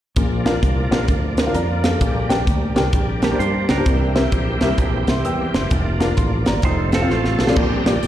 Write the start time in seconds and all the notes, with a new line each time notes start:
0.16 A#1 A#2 F3 A#3 D4, kick, closed hi-hat
0.45 D4 F4 A#4 F5, snare, closed hi-hat
0.63 C2, kick, closed hi-hat
0.91 A#1 D4 F4 A#4 F5, snare, closed hi-hat
1.08 D2, kick, closed hi-hat
1.37 A#4 C5, snare, closed hi-hat
1.47 D4 F4 A#4 F5
1.54 F2 D5 A#5, closed hi-hat
1.84 A4 F5, snare, closed hi-hat
2.01 A#1 A#2 G3 A#3, kick, closed hi-hat
2.29 D4 G4 A#4 G5, snare, closed hi-hat
2.47 D2, kick, closed hi-hat
2.76 C2 D4 G4 A#4 G5, snare, closed hi-hat
2.93 A#1, kick, closed hi-hat
3.22 A#3 G4 A#4 A5, snare, closed hi-hat
3.31 D4 G4 A#4 C5
3.39 G2 C5, closed hi-hat
3.69 C#2 D4 A#4 G5, snare, closed hi-hat
3.77 D4 G4 A#4 C5
3.86 C2 C3 E3 C4 G4, kick, closed hi-hat
4.15 C4 G4 A#4 E5, snare, closed hi-hat
4.32 A#1, kick, closed hi-hat
4.61 C2 C4 G4 A#4 E5, snare, closed hi-hat
4.78 A#1, kick, closed hi-hat
5.07 C2 E5 C6, snare, closed hi-hat
5.25 E2 G5 E6, closed hi-hat
5.54 F#1 E5 C6, snare, closed hi-hat
5.71 F1 F3 D4, kick, closed hi-hat
6.00 D4 F4 A#4 F5, snare, closed hi-hat
6.17 A1 C6, kick, closed hi-hat
6.46 G1 D5 A#5, snare, closed hi-hat
6.62 F1 F3 A3 C4 D#4 C5, kick, closed hi-hat
6.92 C4 A4 F5, snare, closed hi-hat
7.02 C4 F4 A4 F5
7.10 A1 A3 F4 A4, snare
7.25 snare
7.39 B1 A4 F5, snare
7.44 C5, snare
7.49 C4 F4 A4 D5
7.56 A#1 A#2 D3 G3 C4 D4 G4 A#4, kick, crash
7.86 A#3 F4 G4 D5, snare, closed hi-hat
8.03 A1, closed hi-hat